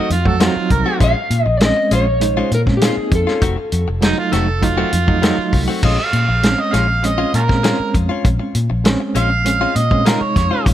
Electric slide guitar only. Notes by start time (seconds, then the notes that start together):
1.04 F5
1.45 D#5
1.57 D5
1.65 D#5
1.95 C#5
2.38 C5
2.55 A#4
2.77 G4
2.85 G#4
3.15 A4